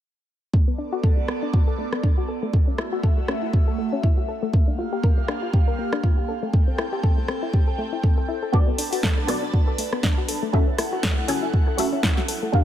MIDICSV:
0, 0, Header, 1, 5, 480
1, 0, Start_track
1, 0, Tempo, 500000
1, 514, Time_signature, 4, 2, 24, 8
1, 12134, End_track
2, 0, Start_track
2, 0, Title_t, "Analog synth pad"
2, 0, Program_c, 0, 89
2, 511, Note_on_c, 0, 74, 86
2, 513, Note_on_c, 0, 59, 82
2, 513, Note_on_c, 0, 69, 73
2, 2413, Note_off_c, 0, 74, 0
2, 2414, Note_off_c, 0, 59, 0
2, 2414, Note_off_c, 0, 69, 0
2, 2433, Note_on_c, 0, 57, 82
2, 2433, Note_on_c, 0, 76, 88
2, 2434, Note_on_c, 0, 66, 71
2, 4334, Note_off_c, 0, 57, 0
2, 4334, Note_off_c, 0, 66, 0
2, 4334, Note_off_c, 0, 76, 0
2, 4353, Note_on_c, 0, 58, 81
2, 4353, Note_on_c, 0, 77, 89
2, 4354, Note_on_c, 0, 67, 72
2, 6017, Note_off_c, 0, 58, 0
2, 6017, Note_off_c, 0, 67, 0
2, 6017, Note_off_c, 0, 77, 0
2, 6034, Note_on_c, 0, 60, 79
2, 6034, Note_on_c, 0, 69, 73
2, 6034, Note_on_c, 0, 79, 86
2, 8172, Note_off_c, 0, 60, 0
2, 8172, Note_off_c, 0, 69, 0
2, 8172, Note_off_c, 0, 79, 0
2, 8193, Note_on_c, 0, 81, 85
2, 8194, Note_on_c, 0, 62, 80
2, 8194, Note_on_c, 0, 71, 76
2, 10094, Note_off_c, 0, 62, 0
2, 10094, Note_off_c, 0, 71, 0
2, 10094, Note_off_c, 0, 81, 0
2, 10113, Note_on_c, 0, 69, 75
2, 10113, Note_on_c, 0, 78, 89
2, 10114, Note_on_c, 0, 64, 81
2, 12014, Note_off_c, 0, 64, 0
2, 12014, Note_off_c, 0, 69, 0
2, 12014, Note_off_c, 0, 78, 0
2, 12032, Note_on_c, 0, 65, 81
2, 12032, Note_on_c, 0, 70, 75
2, 12032, Note_on_c, 0, 79, 88
2, 12134, Note_off_c, 0, 65, 0
2, 12134, Note_off_c, 0, 70, 0
2, 12134, Note_off_c, 0, 79, 0
2, 12134, End_track
3, 0, Start_track
3, 0, Title_t, "Synth stab"
3, 0, Program_c, 1, 62
3, 8183, Note_on_c, 1, 59, 73
3, 8190, Note_on_c, 1, 66, 67
3, 8197, Note_on_c, 1, 69, 67
3, 8204, Note_on_c, 1, 74, 80
3, 8883, Note_off_c, 1, 59, 0
3, 8887, Note_off_c, 1, 66, 0
3, 8890, Note_off_c, 1, 69, 0
3, 8894, Note_off_c, 1, 74, 0
3, 8903, Note_on_c, 1, 59, 83
3, 8910, Note_on_c, 1, 66, 75
3, 8917, Note_on_c, 1, 69, 74
3, 8925, Note_on_c, 1, 74, 87
3, 10083, Note_off_c, 1, 59, 0
3, 10087, Note_off_c, 1, 66, 0
3, 10090, Note_off_c, 1, 69, 0
3, 10094, Note_off_c, 1, 74, 0
3, 10108, Note_on_c, 1, 61, 85
3, 10112, Note_on_c, 1, 66, 79
3, 10115, Note_on_c, 1, 69, 80
3, 10119, Note_on_c, 1, 76, 92
3, 10254, Note_off_c, 1, 61, 0
3, 10255, Note_off_c, 1, 66, 0
3, 10257, Note_off_c, 1, 69, 0
3, 10259, Note_off_c, 1, 76, 0
3, 10828, Note_on_c, 1, 61, 79
3, 10831, Note_on_c, 1, 66, 76
3, 10835, Note_on_c, 1, 69, 76
3, 10839, Note_on_c, 1, 80, 90
3, 11286, Note_off_c, 1, 61, 0
3, 11287, Note_off_c, 1, 66, 0
3, 11289, Note_off_c, 1, 69, 0
3, 11291, Note_off_c, 1, 80, 0
3, 11302, Note_on_c, 1, 61, 84
3, 11309, Note_on_c, 1, 66, 79
3, 11317, Note_on_c, 1, 69, 81
3, 11324, Note_on_c, 1, 76, 94
3, 12003, Note_off_c, 1, 61, 0
3, 12007, Note_off_c, 1, 66, 0
3, 12010, Note_off_c, 1, 69, 0
3, 12014, Note_off_c, 1, 76, 0
3, 12022, Note_on_c, 1, 62, 71
3, 12029, Note_on_c, 1, 67, 67
3, 12037, Note_on_c, 1, 70, 66
3, 12044, Note_on_c, 1, 77, 80
3, 12134, Note_off_c, 1, 62, 0
3, 12134, Note_off_c, 1, 67, 0
3, 12134, Note_off_c, 1, 70, 0
3, 12134, Note_off_c, 1, 77, 0
3, 12134, End_track
4, 0, Start_track
4, 0, Title_t, "Synth arpeggio sound"
4, 0, Program_c, 2, 84
4, 513, Note_on_c, 2, 57, 76
4, 587, Note_off_c, 2, 57, 0
4, 649, Note_on_c, 2, 59, 71
4, 734, Note_off_c, 2, 59, 0
4, 752, Note_on_c, 2, 62, 72
4, 864, Note_off_c, 2, 62, 0
4, 888, Note_on_c, 2, 66, 95
4, 945, Note_off_c, 2, 66, 0
4, 993, Note_on_c, 2, 69, 93
4, 1104, Note_off_c, 2, 69, 0
4, 1128, Note_on_c, 2, 57, 70
4, 1163, Note_off_c, 2, 57, 0
4, 1232, Note_on_c, 2, 59, 71
4, 1344, Note_off_c, 2, 59, 0
4, 1368, Note_on_c, 2, 62, 70
4, 1454, Note_off_c, 2, 62, 0
4, 1472, Note_on_c, 2, 66, 77
4, 1547, Note_off_c, 2, 66, 0
4, 1608, Note_on_c, 2, 69, 75
4, 1694, Note_off_c, 2, 69, 0
4, 1712, Note_on_c, 2, 57, 72
4, 1787, Note_off_c, 2, 57, 0
4, 1849, Note_on_c, 2, 59, 94
4, 1906, Note_off_c, 2, 59, 0
4, 1953, Note_on_c, 2, 62, 92
4, 2064, Note_off_c, 2, 62, 0
4, 2089, Note_on_c, 2, 66, 71
4, 2123, Note_off_c, 2, 66, 0
4, 2193, Note_on_c, 2, 69, 73
4, 2267, Note_off_c, 2, 69, 0
4, 2329, Note_on_c, 2, 57, 95
4, 2386, Note_off_c, 2, 57, 0
4, 2433, Note_on_c, 2, 57, 78
4, 2507, Note_off_c, 2, 57, 0
4, 2568, Note_on_c, 2, 61, 72
4, 2654, Note_off_c, 2, 61, 0
4, 2673, Note_on_c, 2, 64, 71
4, 2784, Note_off_c, 2, 64, 0
4, 2808, Note_on_c, 2, 66, 91
4, 2866, Note_off_c, 2, 66, 0
4, 2913, Note_on_c, 2, 69, 93
4, 3024, Note_off_c, 2, 69, 0
4, 3049, Note_on_c, 2, 57, 70
4, 3083, Note_off_c, 2, 57, 0
4, 3153, Note_on_c, 2, 61, 72
4, 3264, Note_off_c, 2, 61, 0
4, 3289, Note_on_c, 2, 64, 74
4, 3374, Note_off_c, 2, 64, 0
4, 3393, Note_on_c, 2, 66, 75
4, 3467, Note_off_c, 2, 66, 0
4, 3528, Note_on_c, 2, 69, 74
4, 3614, Note_off_c, 2, 69, 0
4, 3632, Note_on_c, 2, 57, 71
4, 3707, Note_off_c, 2, 57, 0
4, 3768, Note_on_c, 2, 61, 91
4, 3826, Note_off_c, 2, 61, 0
4, 3872, Note_on_c, 2, 64, 96
4, 3984, Note_off_c, 2, 64, 0
4, 4009, Note_on_c, 2, 66, 68
4, 4043, Note_off_c, 2, 66, 0
4, 4113, Note_on_c, 2, 69, 71
4, 4187, Note_off_c, 2, 69, 0
4, 4249, Note_on_c, 2, 57, 95
4, 4306, Note_off_c, 2, 57, 0
4, 4353, Note_on_c, 2, 58, 77
4, 4427, Note_off_c, 2, 58, 0
4, 4489, Note_on_c, 2, 62, 71
4, 4574, Note_off_c, 2, 62, 0
4, 4593, Note_on_c, 2, 65, 73
4, 4704, Note_off_c, 2, 65, 0
4, 4729, Note_on_c, 2, 67, 92
4, 4786, Note_off_c, 2, 67, 0
4, 4833, Note_on_c, 2, 70, 92
4, 4944, Note_off_c, 2, 70, 0
4, 4969, Note_on_c, 2, 58, 70
4, 5003, Note_off_c, 2, 58, 0
4, 5073, Note_on_c, 2, 62, 76
4, 5184, Note_off_c, 2, 62, 0
4, 5209, Note_on_c, 2, 65, 71
4, 5294, Note_off_c, 2, 65, 0
4, 5313, Note_on_c, 2, 67, 79
4, 5387, Note_off_c, 2, 67, 0
4, 5449, Note_on_c, 2, 70, 77
4, 5534, Note_off_c, 2, 70, 0
4, 5554, Note_on_c, 2, 58, 74
4, 5628, Note_off_c, 2, 58, 0
4, 5689, Note_on_c, 2, 62, 95
4, 5746, Note_off_c, 2, 62, 0
4, 5794, Note_on_c, 2, 65, 94
4, 5905, Note_off_c, 2, 65, 0
4, 5929, Note_on_c, 2, 67, 70
4, 5963, Note_off_c, 2, 67, 0
4, 6034, Note_on_c, 2, 69, 75
4, 6108, Note_off_c, 2, 69, 0
4, 6169, Note_on_c, 2, 57, 96
4, 6226, Note_off_c, 2, 57, 0
4, 6273, Note_on_c, 2, 57, 77
4, 6347, Note_off_c, 2, 57, 0
4, 6409, Note_on_c, 2, 60, 73
4, 6494, Note_off_c, 2, 60, 0
4, 6513, Note_on_c, 2, 64, 74
4, 6624, Note_off_c, 2, 64, 0
4, 6649, Note_on_c, 2, 67, 91
4, 6706, Note_off_c, 2, 67, 0
4, 6753, Note_on_c, 2, 69, 96
4, 6864, Note_off_c, 2, 69, 0
4, 6889, Note_on_c, 2, 57, 70
4, 6923, Note_off_c, 2, 57, 0
4, 6993, Note_on_c, 2, 60, 73
4, 7104, Note_off_c, 2, 60, 0
4, 7129, Note_on_c, 2, 64, 70
4, 7214, Note_off_c, 2, 64, 0
4, 7233, Note_on_c, 2, 67, 81
4, 7307, Note_off_c, 2, 67, 0
4, 7369, Note_on_c, 2, 69, 76
4, 7454, Note_off_c, 2, 69, 0
4, 7473, Note_on_c, 2, 57, 98
4, 7547, Note_off_c, 2, 57, 0
4, 7608, Note_on_c, 2, 64, 70
4, 7643, Note_off_c, 2, 64, 0
4, 7713, Note_on_c, 2, 69, 77
4, 7787, Note_off_c, 2, 69, 0
4, 7848, Note_on_c, 2, 69, 71
4, 7934, Note_off_c, 2, 69, 0
4, 7953, Note_on_c, 2, 64, 73
4, 8064, Note_off_c, 2, 64, 0
4, 8088, Note_on_c, 2, 69, 71
4, 8174, Note_off_c, 2, 69, 0
4, 8192, Note_on_c, 2, 57, 77
4, 8267, Note_off_c, 2, 57, 0
4, 8328, Note_on_c, 2, 59, 75
4, 8414, Note_off_c, 2, 59, 0
4, 8432, Note_on_c, 2, 62, 73
4, 8544, Note_off_c, 2, 62, 0
4, 8569, Note_on_c, 2, 66, 96
4, 8626, Note_off_c, 2, 66, 0
4, 8673, Note_on_c, 2, 69, 95
4, 8784, Note_off_c, 2, 69, 0
4, 8809, Note_on_c, 2, 57, 72
4, 8843, Note_off_c, 2, 57, 0
4, 8913, Note_on_c, 2, 59, 74
4, 9024, Note_off_c, 2, 59, 0
4, 9049, Note_on_c, 2, 62, 71
4, 9134, Note_off_c, 2, 62, 0
4, 9153, Note_on_c, 2, 66, 76
4, 9227, Note_off_c, 2, 66, 0
4, 9289, Note_on_c, 2, 69, 75
4, 9374, Note_off_c, 2, 69, 0
4, 9392, Note_on_c, 2, 57, 75
4, 9467, Note_off_c, 2, 57, 0
4, 9528, Note_on_c, 2, 59, 97
4, 9586, Note_off_c, 2, 59, 0
4, 9633, Note_on_c, 2, 62, 93
4, 9744, Note_off_c, 2, 62, 0
4, 9769, Note_on_c, 2, 66, 70
4, 9803, Note_off_c, 2, 66, 0
4, 9873, Note_on_c, 2, 69, 75
4, 9947, Note_off_c, 2, 69, 0
4, 10009, Note_on_c, 2, 57, 99
4, 10066, Note_off_c, 2, 57, 0
4, 10113, Note_on_c, 2, 57, 78
4, 10187, Note_off_c, 2, 57, 0
4, 10250, Note_on_c, 2, 61, 71
4, 10334, Note_off_c, 2, 61, 0
4, 10354, Note_on_c, 2, 64, 76
4, 10464, Note_off_c, 2, 64, 0
4, 10489, Note_on_c, 2, 66, 97
4, 10546, Note_off_c, 2, 66, 0
4, 10593, Note_on_c, 2, 69, 95
4, 10704, Note_off_c, 2, 69, 0
4, 10729, Note_on_c, 2, 57, 71
4, 10763, Note_off_c, 2, 57, 0
4, 10833, Note_on_c, 2, 61, 76
4, 10944, Note_off_c, 2, 61, 0
4, 10969, Note_on_c, 2, 64, 72
4, 11054, Note_off_c, 2, 64, 0
4, 11073, Note_on_c, 2, 66, 80
4, 11147, Note_off_c, 2, 66, 0
4, 11209, Note_on_c, 2, 69, 76
4, 11294, Note_off_c, 2, 69, 0
4, 11313, Note_on_c, 2, 57, 74
4, 11387, Note_off_c, 2, 57, 0
4, 11449, Note_on_c, 2, 61, 97
4, 11506, Note_off_c, 2, 61, 0
4, 11553, Note_on_c, 2, 64, 94
4, 11664, Note_off_c, 2, 64, 0
4, 11689, Note_on_c, 2, 66, 73
4, 11723, Note_off_c, 2, 66, 0
4, 11793, Note_on_c, 2, 69, 73
4, 11867, Note_off_c, 2, 69, 0
4, 11929, Note_on_c, 2, 57, 99
4, 11986, Note_off_c, 2, 57, 0
4, 12033, Note_on_c, 2, 58, 81
4, 12107, Note_off_c, 2, 58, 0
4, 12134, End_track
5, 0, Start_track
5, 0, Title_t, "Drums"
5, 514, Note_on_c, 9, 36, 102
5, 610, Note_off_c, 9, 36, 0
5, 994, Note_on_c, 9, 36, 93
5, 1090, Note_off_c, 9, 36, 0
5, 1233, Note_on_c, 9, 37, 65
5, 1329, Note_off_c, 9, 37, 0
5, 1474, Note_on_c, 9, 36, 104
5, 1570, Note_off_c, 9, 36, 0
5, 1849, Note_on_c, 9, 37, 63
5, 1945, Note_off_c, 9, 37, 0
5, 1953, Note_on_c, 9, 36, 95
5, 2049, Note_off_c, 9, 36, 0
5, 2433, Note_on_c, 9, 36, 107
5, 2529, Note_off_c, 9, 36, 0
5, 2673, Note_on_c, 9, 37, 71
5, 2769, Note_off_c, 9, 37, 0
5, 2913, Note_on_c, 9, 36, 95
5, 3009, Note_off_c, 9, 36, 0
5, 3153, Note_on_c, 9, 37, 66
5, 3249, Note_off_c, 9, 37, 0
5, 3393, Note_on_c, 9, 36, 106
5, 3489, Note_off_c, 9, 36, 0
5, 3873, Note_on_c, 9, 36, 96
5, 3969, Note_off_c, 9, 36, 0
5, 4353, Note_on_c, 9, 36, 108
5, 4449, Note_off_c, 9, 36, 0
5, 4833, Note_on_c, 9, 36, 96
5, 4929, Note_off_c, 9, 36, 0
5, 5073, Note_on_c, 9, 37, 68
5, 5169, Note_off_c, 9, 37, 0
5, 5313, Note_on_c, 9, 36, 112
5, 5409, Note_off_c, 9, 36, 0
5, 5689, Note_on_c, 9, 37, 67
5, 5785, Note_off_c, 9, 37, 0
5, 5793, Note_on_c, 9, 36, 96
5, 5889, Note_off_c, 9, 36, 0
5, 6273, Note_on_c, 9, 36, 107
5, 6369, Note_off_c, 9, 36, 0
5, 6513, Note_on_c, 9, 37, 74
5, 6609, Note_off_c, 9, 37, 0
5, 6753, Note_on_c, 9, 36, 97
5, 6849, Note_off_c, 9, 36, 0
5, 6993, Note_on_c, 9, 37, 71
5, 7089, Note_off_c, 9, 37, 0
5, 7234, Note_on_c, 9, 36, 109
5, 7330, Note_off_c, 9, 36, 0
5, 7714, Note_on_c, 9, 36, 95
5, 7810, Note_off_c, 9, 36, 0
5, 8194, Note_on_c, 9, 36, 104
5, 8290, Note_off_c, 9, 36, 0
5, 8433, Note_on_c, 9, 46, 93
5, 8529, Note_off_c, 9, 46, 0
5, 8569, Note_on_c, 9, 46, 53
5, 8665, Note_off_c, 9, 46, 0
5, 8670, Note_on_c, 9, 38, 104
5, 8674, Note_on_c, 9, 36, 92
5, 8766, Note_off_c, 9, 38, 0
5, 8770, Note_off_c, 9, 36, 0
5, 8913, Note_on_c, 9, 37, 73
5, 8913, Note_on_c, 9, 46, 98
5, 9009, Note_off_c, 9, 37, 0
5, 9009, Note_off_c, 9, 46, 0
5, 9154, Note_on_c, 9, 36, 106
5, 9250, Note_off_c, 9, 36, 0
5, 9393, Note_on_c, 9, 46, 97
5, 9489, Note_off_c, 9, 46, 0
5, 9529, Note_on_c, 9, 37, 72
5, 9625, Note_off_c, 9, 37, 0
5, 9631, Note_on_c, 9, 38, 103
5, 9634, Note_on_c, 9, 36, 94
5, 9727, Note_off_c, 9, 38, 0
5, 9730, Note_off_c, 9, 36, 0
5, 9874, Note_on_c, 9, 46, 94
5, 9970, Note_off_c, 9, 46, 0
5, 10114, Note_on_c, 9, 36, 101
5, 10210, Note_off_c, 9, 36, 0
5, 10353, Note_on_c, 9, 37, 78
5, 10353, Note_on_c, 9, 46, 89
5, 10449, Note_off_c, 9, 37, 0
5, 10449, Note_off_c, 9, 46, 0
5, 10590, Note_on_c, 9, 38, 102
5, 10594, Note_on_c, 9, 36, 89
5, 10686, Note_off_c, 9, 38, 0
5, 10690, Note_off_c, 9, 36, 0
5, 10833, Note_on_c, 9, 46, 93
5, 10929, Note_off_c, 9, 46, 0
5, 11074, Note_on_c, 9, 36, 102
5, 11170, Note_off_c, 9, 36, 0
5, 11313, Note_on_c, 9, 46, 96
5, 11409, Note_off_c, 9, 46, 0
5, 11551, Note_on_c, 9, 38, 107
5, 11554, Note_on_c, 9, 36, 91
5, 11647, Note_off_c, 9, 38, 0
5, 11650, Note_off_c, 9, 36, 0
5, 11686, Note_on_c, 9, 38, 33
5, 11782, Note_off_c, 9, 38, 0
5, 11793, Note_on_c, 9, 46, 93
5, 11889, Note_off_c, 9, 46, 0
5, 12033, Note_on_c, 9, 36, 103
5, 12129, Note_off_c, 9, 36, 0
5, 12134, End_track
0, 0, End_of_file